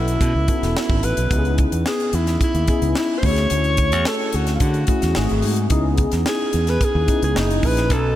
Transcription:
0.00 0.16 B1 medium
0.00 0.48 B3 medium
0.00 0.48 C#4 medium
0.00 0.55 E4 medium
0.00 0.77 E4 medium
0.00 0.48 F#4 medium
0.00 0.49 A4 medium
0.08 closed hi-hat soft
0.21 0.32 B2 loud
0.21 kick medium
0.21 closed hi-hat medium
0.35 0.46 C#2 medium
0.48 1.00 B3 medium
0.48 1.00 C#4 medium
0.48 0.55 D#4 medium
0.48 1.00 F#4 medium
0.48 1.00 A4 medium
0.48 kick medium
0.48 closed hi-hat medium
0.55 1.03 E4 medium
0.63 0.74 E1 medium
0.63 snare soft
0.63 closed hi-hat soft
0.77 1.06 E4 medium
0.77 snare loud
0.90 1.01 G#1 medium
0.90 kick medium
1.03 1.15 A1 medium
1.03 1.59 B4 medium
1.03 closed hi-hat medium
1.17 1.29 B1 medium
1.17 closed hi-hat medium
1.30 1.65 C#2 loud
1.30 2.00 B3 medium
1.30 2.00 C#4 medium
1.30 2.00 D#4 medium
1.30 2.00 E4 medium
1.30 1.38 G4 medium
1.30 kick loud
1.30 closed hi-hat medium
1.38 2.04 G#4 medium
1.45 closed hi-hat soft
1.58 kick medium
1.58 closed hi-hat medium
1.72 1.84 E2 medium
1.72 closed hi-hat soft
1.86 2.16 G#4 medium
1.86 snare loud
2.00 closed hi-hat soft
2.13 2.36 E2 medium
2.13 2.42 E4 medium
2.13 closed hi-hat medium
2.27 snare soft
2.27 closed hi-hat soft
2.41 2.93 E4 medium
2.41 kick medium
2.41 closed hi-hat medium
2.55 2.66 D#2 medium
2.55 closed hi-hat soft
2.68 3.20 B3 medium
2.68 3.20 C#4 medium
2.68 3.20 D#4 medium
2.68 3.20 E4 medium
2.68 3.21 G#4 medium
2.68 kick medium
2.68 closed hi-hat medium
2.82 2.93 C#2 medium
2.82 closed hi-hat soft
2.95 3.20 E4 medium
2.95 snare medium
3.19 3.27 C5 medium
3.23 3.46 D2 medium
3.23 4.11 A3 medium
3.23 4.11 C#4 medium
3.23 4.11 E4 medium
3.23 4.12 F#4 medium
3.23 3.30 G4 medium
3.23 4.09 C#5 loud
3.23 kick loud
3.23 open hi-hat medium
3.31 4.15 G#4 medium
3.36 snare soft
3.36 closed hi-hat soft
3.50 3.93 D2 medium
3.50 closed hi-hat medium
3.64 closed hi-hat soft
3.77 kick medium
3.77 closed hi-hat medium
3.92 4.04 E2 medium
3.92 closed hi-hat medium
4.05 4.37 A4 medium
4.05 snare loud
4.32 4.57 D2 medium
4.32 4.55 F#4 medium
4.32 closed hi-hat medium
4.47 snare soft
4.47 closed hi-hat soft
4.55 4.64 F4 medium
4.60 4.83 D3 medium
4.60 5.44 F#4 medium
4.60 kick medium
4.60 closed hi-hat medium
4.74 closed hi-hat soft
4.87 5.15 A3 medium
4.87 5.16 C#4 medium
4.87 5.16 E4 medium
4.87 5.15 F#4 medium
4.87 5.15 G#4 medium
4.87 kick medium
4.87 closed hi-hat medium
5.02 5.14 E2 medium
5.02 snare soft
5.02 closed hi-hat soft
5.15 5.28 G#1 medium
5.15 5.60 A3 medium
5.15 5.60 C4 medium
5.15 5.60 D#4 medium
5.15 5.60 F#4 medium
5.15 5.60 G#4 medium
5.15 snare loud
5.29 5.42 G#1 medium
5.29 closed hi-hat soft
5.42 5.66 G#2 medium
5.42 open hi-hat medium
5.56 closed hi-hat soft
5.70 6.05 C#2 loud
5.70 6.40 B3 medium
5.70 6.40 C#4 medium
5.70 6.40 D#4 medium
5.70 6.40 E4 medium
5.70 6.40 G#4 medium
5.70 kick loud
5.70 closed hi-hat loud
5.97 kick medium
5.97 closed hi-hat medium
6.12 6.24 E2 medium
6.12 snare soft
6.12 closed hi-hat medium
6.26 6.71 G#4 medium
6.26 snare loud
6.53 6.76 E2 medium
6.53 closed hi-hat medium
6.67 6.86 B4 medium
6.67 snare soft
6.67 closed hi-hat soft
6.81 7.24 G#4 loud
6.81 kick medium
6.81 closed hi-hat medium
6.95 7.06 D#2 medium
7.07 7.35 B3 medium
7.07 7.34 C#4 medium
7.07 7.34 D#4 medium
7.07 7.34 E4 medium
7.07 7.34 G#4 medium
7.07 kick medium
7.07 closed hi-hat medium
7.23 7.34 C#2 medium
7.23 7.36 G#4 medium
7.23 closed hi-hat soft
7.35 7.59 F#1 medium
7.35 7.79 A#3 medium
7.35 7.79 C#4 medium
7.35 7.79 D#4 medium
7.35 7.68 D#4 medium
7.35 7.79 E4 medium
7.35 7.79 G#4 medium
7.35 snare medium
7.50 closed hi-hat soft
7.63 7.91 A#1 medium
7.63 7.94 B4 loud
7.63 kick medium
7.63 open hi-hat medium
7.77 snare soft
7.77 closed hi-hat soft
7.90 8.16 B1 medium
7.90 8.16 B3 medium
7.90 8.16 C#4 medium
7.90 8.16 D#4 medium
7.90 8.16 F#4 medium
7.90 8.16 A4 medium
7.90 kick loud
7.90 closed hi-hat medium

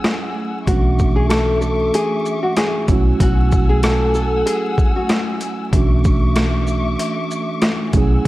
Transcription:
0.00 0.32 F#3 medium
0.00 0.32 A3 medium
0.00 0.63 A3 medium
0.00 0.33 C#4 medium
0.00 0.33 E4 medium
0.00 0.34 G#4 medium
0.00 0.66 F#5 medium
0.00 0.65 G#5 medium
0.00 0.66 E6 medium
0.04 cross-stick medium
0.04 snare loud
0.67 1.90 B1 loud
0.67 2.84 E3 medium
0.67 2.86 A3 medium
0.67 2.85 A3 medium
0.67 2.85 C#4 medium
0.67 2.86 D4 medium
0.67 1.14 F#4 medium
0.67 2.86 E5 medium
0.67 2.86 C#6 medium
0.67 2.86 D6 medium
0.67 kick loud
0.67 closed hi-hat medium
0.71 2.86 F#4 medium
0.99 kick medium
0.99 shaker medium
1.16 1.29 G#4 medium
1.29 1.58 A4 medium
1.29 cross-stick loud
1.29 snare loud
1.29 closed hi-hat medium
1.61 1.90 A4 medium
1.61 shaker soft
1.94 2.41 G#4 medium
1.94 closed hi-hat medium
2.25 shaker soft
2.43 2.55 F#4 medium
2.57 2.85 G#4 medium
2.57 cross-stick medium
2.57 snare loud
2.57 closed hi-hat medium
2.87 3.12 B1 loud
2.87 5.37 F#3 medium
2.87 8.28 A3 medium
2.87 5.37 A3 medium
2.87 5.38 C#4 medium
2.87 5.38 E4 medium
2.87 5.69 F#5 medium
2.87 5.69 G#5 medium
2.87 5.69 E6 medium
2.87 kick loud
2.87 closed hi-hat medium
2.87 shaker medium
2.92 5.39 F#4 medium
3.20 4.42 B1 loud
3.20 3.68 F#4 loud
3.20 kick loud
3.20 closed hi-hat medium
3.52 kick medium
3.52 shaker medium
3.69 3.82 G#4 medium
3.83 4.12 A4 medium
3.83 cross-stick loud
3.83 snare loud
3.83 closed hi-hat medium
4.14 4.43 A4 medium
4.14 shaker soft
4.46 4.93 G#4 medium
4.46 closed hi-hat medium
4.78 kick medium
4.78 shaker soft
4.96 5.08 F#4 medium
5.09 cross-stick medium
5.09 snare loud
5.09 closed hi-hat medium
5.41 closed hi-hat medium
5.41 shaker soft
5.72 6.95 B1 loud
5.72 7.89 E3 medium
5.72 7.90 A3 medium
5.72 7.91 C#4 medium
5.72 7.91 D4 medium
5.72 7.91 E5 medium
5.72 7.91 C#6 medium
5.72 7.91 D6 medium
5.72 kick loud
5.72 closed hi-hat medium
5.76 7.92 F#4 medium
6.04 kick loud
6.04 shaker medium
6.36 cross-stick loud
6.36 snare loud
6.36 closed hi-hat medium
6.67 shaker soft
6.99 closed hi-hat loud
7.31 shaker medium
7.62 cross-stick medium
7.62 snare loud
7.62 closed hi-hat medium
7.93 8.17 B1 loud
7.93 8.28 F#3 medium
7.93 8.28 A3 medium
7.93 8.28 C#4 medium
7.93 8.28 E4 medium
7.93 8.28 F#5 medium
7.93 8.28 G#5 medium
7.93 8.28 E6 medium
7.93 kick loud
7.93 closed hi-hat soft
7.93 shaker medium
7.97 8.28 G#4 medium

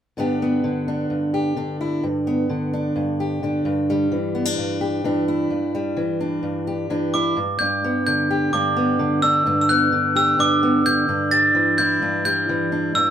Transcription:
0.17 1.10 G2 medium
0.17 0.63 D3 soft
0.17 0.42 B3 soft
0.17 0.87 D4 soft
0.17 1.33 G4 soft
0.42 2.01 B3 soft
0.64 1.55 D3 soft
0.88 1.57 D4 soft
1.10 2.03 G2 soft
1.34 1.80 G4 soft
1.56 2.48 D3 soft
1.56 2.73 D4 soft
1.81 2.04 E4 soft
2.03 2.95 G2 medium
2.27 3.63 B3 soft
2.49 3.42 D3 soft
2.73 3.43 D4 soft
2.96 3.65 G2 medium
3.20 4.80 G4 soft
3.43 4.11 D3 soft
3.43 4.15 D4 soft
3.65 4.58 G2 medium
3.90 5.74 G3 soft
4.12 5.03 E3 medium
4.35 4.45 B3 soft
4.45 5.04 D4 soft
4.58 5.50 G2 medium
4.81 5.28 G4 soft
5.04 5.48 E3 medium
5.04 6.00 D4 soft
5.28 6.67 E4 soft
5.50 6.41 G2 medium
5.75 7.84 G3 soft
5.97 6.89 E3 medium
6.21 6.89 D4 soft
6.43 7.34 G2 medium
6.67 7.14 G4 soft
6.90 7.34 E3 medium
6.90 7.34 D4 soft
7.14 7.37 E4 soft
7.14 7.62 D6 medium
7.37 7.57 G2 medium
7.59 8.52 G2 medium
7.59 8.53 D4 soft
7.59 8.05 G6 medium
7.84 8.75 B3 soft
8.07 8.98 D3 soft
8.07 8.54 G6 medium
8.31 10.15 G4 soft
8.53 9.45 G2 medium
8.53 9.23 D4 soft
8.53 9.25 D6 medium
8.77 9.43 B3 soft
8.99 9.91 D3 medium
9.22 9.46 D4 soft
9.22 9.60 E6 medium
9.46 10.38 G2 medium
9.46 10.39 D4 soft
9.61 9.69 E6 medium
9.69 10.62 B3 medium
9.69 10.17 F#6 medium
9.92 10.84 D3 medium
10.16 11.79 G4 medium
10.16 10.38 E6 medium
10.39 11.08 G2 medium
10.39 11.08 D4 medium
10.39 10.87 D6 medium
10.63 11.06 B3 soft
10.86 11.54 D3 soft
10.86 11.33 G6 medium
11.08 12.01 G2 medium
11.08 12.02 D4 soft
11.31 12.24 G3 medium
11.31 11.75 A6 medium
11.55 12.48 E3 medium
11.78 13.10 E4 medium
11.78 12.24 G6 medium
12.02 12.92 G2 medium
12.02 12.72 D4 soft
12.25 13.10 G3 soft
12.25 12.97 G6 medium
12.49 12.92 E3 medium
12.72 12.95 D4 soft
12.95 13.10 G2 medium
12.95 13.10 D4 soft
12.95 13.10 E6 medium

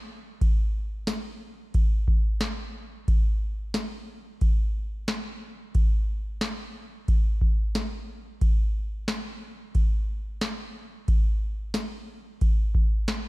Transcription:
0.41 kick loud
0.41 ride medium
1.07 snare loud
1.07 ride medium
1.07 tambourine medium
1.74 kick loud
1.74 ride medium
2.08 kick medium
2.40 snare loud
2.40 ride medium
2.40 tambourine medium
3.08 kick loud
3.08 ride medium
3.74 snare loud
3.74 ride medium
3.74 tambourine medium
4.41 kick loud
4.41 ride soft
5.08 snare loud
5.08 ride medium
5.08 tambourine medium
5.75 kick loud
5.75 ride medium
6.41 snare loud
6.41 ride medium
6.41 tambourine medium
7.08 kick loud
7.08 ride medium
7.41 kick medium
7.75 snare loud
7.75 ride medium
7.75 tambourine medium
8.41 kick loud
8.41 ride medium
9.08 snare loud
9.08 ride medium
9.08 tambourine medium
9.75 kick loud
9.75 ride soft
10.41 snare loud
10.41 ride medium
10.41 tambourine medium
11.08 kick loud
11.08 ride medium
11.74 snare loud
11.74 ride medium
11.74 tambourine medium
12.41 kick loud
12.41 ride soft
12.75 kick medium
13.08 snare loud
13.08 ride medium
13.08 tambourine medium

